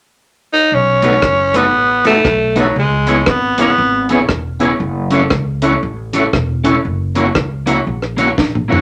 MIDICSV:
0, 0, Header, 1, 7, 480
1, 0, Start_track
1, 0, Tempo, 510204
1, 678, Time_signature, 4, 2, 24, 8
1, 8288, End_track
2, 0, Start_track
2, 0, Title_t, "Clean electric guitar"
2, 0, Program_c, 0, 27
2, 964, Note_on_c, 0, 57, 82
2, 972, Note_on_c, 0, 63, 91
2, 977, Note_on_c, 0, 66, 85
2, 985, Note_on_c, 0, 71, 98
2, 1060, Note_off_c, 0, 57, 0
2, 1064, Note_off_c, 0, 63, 0
2, 1066, Note_off_c, 0, 66, 0
2, 1070, Note_off_c, 0, 71, 0
2, 1448, Note_on_c, 0, 57, 77
2, 1453, Note_on_c, 0, 63, 90
2, 1461, Note_on_c, 0, 66, 80
2, 1463, Note_on_c, 0, 71, 85
2, 1541, Note_off_c, 0, 57, 0
2, 1544, Note_off_c, 0, 63, 0
2, 1548, Note_off_c, 0, 66, 0
2, 1549, Note_off_c, 0, 71, 0
2, 1924, Note_on_c, 0, 57, 82
2, 1928, Note_on_c, 0, 63, 95
2, 1931, Note_on_c, 0, 66, 90
2, 1940, Note_on_c, 0, 71, 93
2, 2020, Note_off_c, 0, 57, 0
2, 2021, Note_off_c, 0, 63, 0
2, 2023, Note_off_c, 0, 66, 0
2, 2028, Note_off_c, 0, 71, 0
2, 2404, Note_on_c, 0, 57, 71
2, 2410, Note_on_c, 0, 63, 80
2, 2417, Note_on_c, 0, 66, 76
2, 2423, Note_on_c, 0, 71, 84
2, 2500, Note_off_c, 0, 57, 0
2, 2503, Note_off_c, 0, 63, 0
2, 2506, Note_off_c, 0, 66, 0
2, 2509, Note_off_c, 0, 71, 0
2, 2889, Note_on_c, 0, 59, 86
2, 2898, Note_on_c, 0, 64, 90
2, 2903, Note_on_c, 0, 68, 89
2, 2905, Note_on_c, 0, 73, 102
2, 2982, Note_off_c, 0, 59, 0
2, 2986, Note_off_c, 0, 64, 0
2, 2989, Note_off_c, 0, 68, 0
2, 2990, Note_off_c, 0, 73, 0
2, 3371, Note_on_c, 0, 59, 91
2, 3379, Note_on_c, 0, 64, 94
2, 3382, Note_on_c, 0, 68, 91
2, 3389, Note_on_c, 0, 73, 84
2, 3463, Note_off_c, 0, 59, 0
2, 3467, Note_off_c, 0, 64, 0
2, 3468, Note_off_c, 0, 68, 0
2, 3471, Note_off_c, 0, 73, 0
2, 3861, Note_on_c, 0, 59, 87
2, 3872, Note_on_c, 0, 64, 77
2, 3878, Note_on_c, 0, 68, 90
2, 3878, Note_on_c, 0, 73, 73
2, 3948, Note_off_c, 0, 59, 0
2, 3953, Note_off_c, 0, 64, 0
2, 3956, Note_off_c, 0, 68, 0
2, 3956, Note_off_c, 0, 73, 0
2, 4334, Note_on_c, 0, 59, 94
2, 4340, Note_on_c, 0, 64, 93
2, 4350, Note_on_c, 0, 68, 86
2, 4350, Note_on_c, 0, 73, 97
2, 4424, Note_off_c, 0, 59, 0
2, 4427, Note_off_c, 0, 64, 0
2, 4432, Note_off_c, 0, 68, 0
2, 4432, Note_off_c, 0, 73, 0
2, 4816, Note_on_c, 0, 61, 82
2, 4824, Note_on_c, 0, 64, 79
2, 4833, Note_on_c, 0, 69, 88
2, 4836, Note_on_c, 0, 73, 94
2, 4905, Note_off_c, 0, 61, 0
2, 4909, Note_off_c, 0, 64, 0
2, 4914, Note_off_c, 0, 69, 0
2, 4915, Note_off_c, 0, 73, 0
2, 5296, Note_on_c, 0, 61, 81
2, 5305, Note_on_c, 0, 64, 85
2, 5306, Note_on_c, 0, 69, 81
2, 5315, Note_on_c, 0, 73, 92
2, 5386, Note_off_c, 0, 61, 0
2, 5390, Note_off_c, 0, 64, 0
2, 5391, Note_off_c, 0, 69, 0
2, 5395, Note_off_c, 0, 73, 0
2, 5775, Note_on_c, 0, 61, 69
2, 5780, Note_on_c, 0, 64, 80
2, 5787, Note_on_c, 0, 69, 86
2, 5792, Note_on_c, 0, 73, 87
2, 5865, Note_off_c, 0, 61, 0
2, 5868, Note_off_c, 0, 64, 0
2, 5871, Note_off_c, 0, 69, 0
2, 5874, Note_off_c, 0, 73, 0
2, 6248, Note_on_c, 0, 61, 77
2, 6255, Note_on_c, 0, 64, 80
2, 6261, Note_on_c, 0, 69, 81
2, 6268, Note_on_c, 0, 73, 88
2, 6342, Note_off_c, 0, 61, 0
2, 6346, Note_off_c, 0, 64, 0
2, 6349, Note_off_c, 0, 69, 0
2, 6352, Note_off_c, 0, 73, 0
2, 6735, Note_on_c, 0, 58, 87
2, 6742, Note_on_c, 0, 64, 83
2, 6749, Note_on_c, 0, 73, 86
2, 6751, Note_on_c, 0, 66, 88
2, 6826, Note_off_c, 0, 58, 0
2, 6829, Note_off_c, 0, 64, 0
2, 6833, Note_off_c, 0, 73, 0
2, 6834, Note_off_c, 0, 66, 0
2, 7209, Note_on_c, 0, 58, 82
2, 7219, Note_on_c, 0, 64, 85
2, 7224, Note_on_c, 0, 66, 83
2, 7225, Note_on_c, 0, 73, 89
2, 7303, Note_off_c, 0, 58, 0
2, 7308, Note_off_c, 0, 64, 0
2, 7311, Note_off_c, 0, 66, 0
2, 7311, Note_off_c, 0, 73, 0
2, 7685, Note_on_c, 0, 58, 74
2, 7698, Note_on_c, 0, 64, 83
2, 7700, Note_on_c, 0, 66, 83
2, 7704, Note_on_c, 0, 73, 101
2, 7782, Note_off_c, 0, 58, 0
2, 7788, Note_off_c, 0, 64, 0
2, 7789, Note_off_c, 0, 66, 0
2, 7791, Note_off_c, 0, 73, 0
2, 8169, Note_on_c, 0, 58, 73
2, 8176, Note_on_c, 0, 64, 73
2, 8185, Note_on_c, 0, 66, 80
2, 8189, Note_on_c, 0, 73, 83
2, 8264, Note_off_c, 0, 58, 0
2, 8268, Note_off_c, 0, 64, 0
2, 8272, Note_off_c, 0, 66, 0
2, 8274, Note_off_c, 0, 73, 0
2, 8288, End_track
3, 0, Start_track
3, 0, Title_t, "Tonewheel organ"
3, 0, Program_c, 1, 16
3, 968, Note_on_c, 1, 59, 86
3, 971, Note_on_c, 1, 63, 75
3, 975, Note_on_c, 1, 66, 81
3, 981, Note_on_c, 1, 69, 101
3, 1068, Note_off_c, 1, 59, 0
3, 1069, Note_off_c, 1, 63, 0
3, 1071, Note_off_c, 1, 66, 0
3, 1074, Note_off_c, 1, 69, 0
3, 1447, Note_on_c, 1, 59, 84
3, 1450, Note_on_c, 1, 63, 73
3, 1452, Note_on_c, 1, 66, 75
3, 1458, Note_on_c, 1, 69, 90
3, 1547, Note_off_c, 1, 59, 0
3, 1549, Note_off_c, 1, 63, 0
3, 1550, Note_off_c, 1, 66, 0
3, 1553, Note_off_c, 1, 69, 0
3, 1921, Note_on_c, 1, 59, 85
3, 1926, Note_on_c, 1, 63, 80
3, 1928, Note_on_c, 1, 66, 82
3, 1936, Note_on_c, 1, 69, 99
3, 2024, Note_off_c, 1, 59, 0
3, 2027, Note_off_c, 1, 63, 0
3, 2028, Note_off_c, 1, 66, 0
3, 2031, Note_off_c, 1, 69, 0
3, 2406, Note_on_c, 1, 59, 98
3, 2410, Note_on_c, 1, 63, 84
3, 2415, Note_on_c, 1, 66, 80
3, 2416, Note_on_c, 1, 69, 102
3, 2506, Note_off_c, 1, 59, 0
3, 2509, Note_off_c, 1, 63, 0
3, 2511, Note_off_c, 1, 66, 0
3, 2511, Note_off_c, 1, 69, 0
3, 2883, Note_on_c, 1, 59, 91
3, 2888, Note_on_c, 1, 61, 83
3, 2892, Note_on_c, 1, 64, 78
3, 2894, Note_on_c, 1, 68, 92
3, 2985, Note_off_c, 1, 59, 0
3, 2988, Note_off_c, 1, 61, 0
3, 2990, Note_off_c, 1, 64, 0
3, 2990, Note_off_c, 1, 68, 0
3, 3367, Note_on_c, 1, 59, 84
3, 3371, Note_on_c, 1, 61, 79
3, 3372, Note_on_c, 1, 64, 84
3, 3377, Note_on_c, 1, 68, 98
3, 3467, Note_off_c, 1, 59, 0
3, 3469, Note_off_c, 1, 61, 0
3, 3470, Note_off_c, 1, 64, 0
3, 3472, Note_off_c, 1, 68, 0
3, 3846, Note_on_c, 1, 59, 84
3, 3853, Note_on_c, 1, 61, 87
3, 3855, Note_on_c, 1, 64, 83
3, 3859, Note_on_c, 1, 68, 96
3, 3946, Note_off_c, 1, 59, 0
3, 3950, Note_off_c, 1, 61, 0
3, 3951, Note_off_c, 1, 64, 0
3, 3953, Note_off_c, 1, 68, 0
3, 4323, Note_on_c, 1, 59, 101
3, 4326, Note_on_c, 1, 61, 89
3, 4330, Note_on_c, 1, 64, 86
3, 4334, Note_on_c, 1, 68, 103
3, 4425, Note_off_c, 1, 59, 0
3, 4427, Note_off_c, 1, 61, 0
3, 4428, Note_off_c, 1, 64, 0
3, 4431, Note_off_c, 1, 68, 0
3, 4803, Note_on_c, 1, 57, 90
3, 4806, Note_on_c, 1, 61, 86
3, 4813, Note_on_c, 1, 64, 87
3, 4813, Note_on_c, 1, 66, 100
3, 4905, Note_off_c, 1, 57, 0
3, 4906, Note_off_c, 1, 61, 0
3, 4910, Note_off_c, 1, 64, 0
3, 4910, Note_off_c, 1, 66, 0
3, 5286, Note_on_c, 1, 57, 85
3, 5287, Note_on_c, 1, 61, 78
3, 5292, Note_on_c, 1, 64, 81
3, 5299, Note_on_c, 1, 66, 97
3, 5387, Note_off_c, 1, 57, 0
3, 5387, Note_off_c, 1, 61, 0
3, 5390, Note_off_c, 1, 64, 0
3, 5393, Note_off_c, 1, 66, 0
3, 5765, Note_on_c, 1, 57, 92
3, 5768, Note_on_c, 1, 61, 80
3, 5773, Note_on_c, 1, 64, 90
3, 5778, Note_on_c, 1, 66, 100
3, 5866, Note_off_c, 1, 57, 0
3, 5868, Note_off_c, 1, 61, 0
3, 5871, Note_off_c, 1, 64, 0
3, 5873, Note_off_c, 1, 66, 0
3, 6242, Note_on_c, 1, 57, 94
3, 6246, Note_on_c, 1, 61, 78
3, 6254, Note_on_c, 1, 64, 90
3, 6258, Note_on_c, 1, 66, 98
3, 6345, Note_off_c, 1, 57, 0
3, 6348, Note_off_c, 1, 61, 0
3, 6351, Note_off_c, 1, 64, 0
3, 6353, Note_off_c, 1, 66, 0
3, 6723, Note_on_c, 1, 58, 93
3, 6729, Note_on_c, 1, 61, 85
3, 6733, Note_on_c, 1, 64, 80
3, 6737, Note_on_c, 1, 66, 102
3, 6826, Note_off_c, 1, 58, 0
3, 6829, Note_off_c, 1, 61, 0
3, 6831, Note_off_c, 1, 64, 0
3, 6833, Note_off_c, 1, 66, 0
3, 7210, Note_on_c, 1, 58, 85
3, 7210, Note_on_c, 1, 61, 84
3, 7214, Note_on_c, 1, 64, 80
3, 7219, Note_on_c, 1, 66, 88
3, 7310, Note_off_c, 1, 58, 0
3, 7310, Note_off_c, 1, 61, 0
3, 7312, Note_off_c, 1, 64, 0
3, 7314, Note_off_c, 1, 66, 0
3, 7691, Note_on_c, 1, 58, 90
3, 7696, Note_on_c, 1, 61, 85
3, 7698, Note_on_c, 1, 64, 80
3, 7701, Note_on_c, 1, 66, 97
3, 7791, Note_off_c, 1, 58, 0
3, 7793, Note_off_c, 1, 61, 0
3, 7794, Note_off_c, 1, 64, 0
3, 7796, Note_off_c, 1, 66, 0
3, 8174, Note_on_c, 1, 58, 92
3, 8178, Note_on_c, 1, 61, 83
3, 8181, Note_on_c, 1, 64, 84
3, 8184, Note_on_c, 1, 66, 98
3, 8273, Note_off_c, 1, 58, 0
3, 8275, Note_off_c, 1, 61, 0
3, 8276, Note_off_c, 1, 64, 0
3, 8278, Note_off_c, 1, 66, 0
3, 8288, End_track
4, 0, Start_track
4, 0, Title_t, "Tenor saxophone"
4, 0, Program_c, 2, 66
4, 503, Note_on_c, 2, 63, 97
4, 698, Note_on_c, 2, 61, 102
4, 712, Note_off_c, 2, 63, 0
4, 1474, Note_on_c, 2, 59, 105
4, 1488, Note_off_c, 2, 61, 0
4, 1941, Note_off_c, 2, 59, 0
4, 1946, Note_on_c, 2, 57, 101
4, 2441, Note_on_c, 2, 54, 81
4, 2455, Note_off_c, 2, 57, 0
4, 2613, Note_off_c, 2, 54, 0
4, 2626, Note_on_c, 2, 56, 89
4, 3102, Note_on_c, 2, 59, 93
4, 3117, Note_off_c, 2, 56, 0
4, 3382, Note_off_c, 2, 59, 0
4, 3398, Note_on_c, 2, 59, 89
4, 3831, Note_off_c, 2, 59, 0
4, 8288, End_track
5, 0, Start_track
5, 0, Title_t, "Upright bass"
5, 0, Program_c, 3, 32
5, 675, Note_on_c, 3, 35, 89
5, 1084, Note_off_c, 3, 35, 0
5, 1153, Note_on_c, 3, 30, 91
5, 1635, Note_off_c, 3, 30, 0
5, 1635, Note_on_c, 3, 33, 102
5, 2044, Note_off_c, 3, 33, 0
5, 2115, Note_on_c, 3, 35, 87
5, 2524, Note_off_c, 3, 35, 0
5, 2596, Note_on_c, 3, 37, 97
5, 3004, Note_off_c, 3, 37, 0
5, 3074, Note_on_c, 3, 32, 91
5, 3483, Note_off_c, 3, 32, 0
5, 3557, Note_on_c, 3, 32, 99
5, 3965, Note_off_c, 3, 32, 0
5, 4036, Note_on_c, 3, 28, 76
5, 4445, Note_off_c, 3, 28, 0
5, 4515, Note_on_c, 3, 30, 103
5, 4924, Note_off_c, 3, 30, 0
5, 4994, Note_on_c, 3, 37, 93
5, 5404, Note_off_c, 3, 37, 0
5, 5482, Note_on_c, 3, 33, 95
5, 5889, Note_off_c, 3, 33, 0
5, 5957, Note_on_c, 3, 28, 88
5, 6366, Note_off_c, 3, 28, 0
5, 6443, Note_on_c, 3, 30, 94
5, 6850, Note_off_c, 3, 30, 0
5, 6919, Note_on_c, 3, 37, 78
5, 7328, Note_off_c, 3, 37, 0
5, 7402, Note_on_c, 3, 34, 92
5, 7810, Note_off_c, 3, 34, 0
5, 7883, Note_on_c, 3, 34, 77
5, 8288, Note_off_c, 3, 34, 0
5, 8288, End_track
6, 0, Start_track
6, 0, Title_t, "Muted clean electric guitar strokes"
6, 1158, Note_on_c, 9, 29, 34
6, 1252, Note_off_c, 9, 29, 0
6, 3083, Note_on_c, 9, 29, 40
6, 3177, Note_off_c, 9, 29, 0
6, 5012, Note_on_c, 9, 29, 33
6, 5107, Note_off_c, 9, 29, 0
6, 6927, Note_on_c, 9, 29, 37
6, 7021, Note_off_c, 9, 29, 0
6, 8288, End_track
7, 0, Start_track
7, 0, Title_t, "Drums"
7, 963, Note_on_c, 9, 42, 82
7, 1057, Note_off_c, 9, 42, 0
7, 1151, Note_on_c, 9, 37, 102
7, 1153, Note_on_c, 9, 36, 107
7, 1245, Note_off_c, 9, 37, 0
7, 1247, Note_off_c, 9, 36, 0
7, 1451, Note_on_c, 9, 42, 103
7, 1545, Note_off_c, 9, 42, 0
7, 1927, Note_on_c, 9, 42, 90
7, 2021, Note_off_c, 9, 42, 0
7, 2114, Note_on_c, 9, 36, 117
7, 2117, Note_on_c, 9, 37, 98
7, 2208, Note_off_c, 9, 36, 0
7, 2211, Note_off_c, 9, 37, 0
7, 2406, Note_on_c, 9, 42, 86
7, 2500, Note_off_c, 9, 42, 0
7, 2886, Note_on_c, 9, 42, 86
7, 2980, Note_off_c, 9, 42, 0
7, 3070, Note_on_c, 9, 37, 111
7, 3074, Note_on_c, 9, 36, 121
7, 3164, Note_off_c, 9, 37, 0
7, 3168, Note_off_c, 9, 36, 0
7, 3366, Note_on_c, 9, 42, 105
7, 3460, Note_off_c, 9, 42, 0
7, 3849, Note_on_c, 9, 42, 89
7, 3943, Note_off_c, 9, 42, 0
7, 4033, Note_on_c, 9, 37, 99
7, 4036, Note_on_c, 9, 36, 102
7, 4127, Note_off_c, 9, 37, 0
7, 4130, Note_off_c, 9, 36, 0
7, 4329, Note_on_c, 9, 42, 85
7, 4423, Note_off_c, 9, 42, 0
7, 4803, Note_on_c, 9, 42, 84
7, 4897, Note_off_c, 9, 42, 0
7, 4990, Note_on_c, 9, 37, 103
7, 4995, Note_on_c, 9, 36, 116
7, 5084, Note_off_c, 9, 37, 0
7, 5089, Note_off_c, 9, 36, 0
7, 5286, Note_on_c, 9, 42, 105
7, 5380, Note_off_c, 9, 42, 0
7, 5770, Note_on_c, 9, 42, 97
7, 5864, Note_off_c, 9, 42, 0
7, 5958, Note_on_c, 9, 36, 118
7, 5959, Note_on_c, 9, 37, 99
7, 6052, Note_off_c, 9, 36, 0
7, 6053, Note_off_c, 9, 37, 0
7, 6252, Note_on_c, 9, 42, 91
7, 6346, Note_off_c, 9, 42, 0
7, 6731, Note_on_c, 9, 42, 84
7, 6825, Note_off_c, 9, 42, 0
7, 6916, Note_on_c, 9, 37, 114
7, 6918, Note_on_c, 9, 36, 115
7, 7010, Note_off_c, 9, 37, 0
7, 7013, Note_off_c, 9, 36, 0
7, 7215, Note_on_c, 9, 42, 104
7, 7309, Note_off_c, 9, 42, 0
7, 7549, Note_on_c, 9, 37, 62
7, 7643, Note_off_c, 9, 37, 0
7, 7695, Note_on_c, 9, 42, 89
7, 7789, Note_off_c, 9, 42, 0
7, 7884, Note_on_c, 9, 36, 109
7, 7885, Note_on_c, 9, 38, 54
7, 7978, Note_off_c, 9, 36, 0
7, 7979, Note_off_c, 9, 38, 0
7, 8046, Note_on_c, 9, 45, 62
7, 8141, Note_off_c, 9, 45, 0
7, 8208, Note_on_c, 9, 43, 109
7, 8288, Note_off_c, 9, 43, 0
7, 8288, End_track
0, 0, End_of_file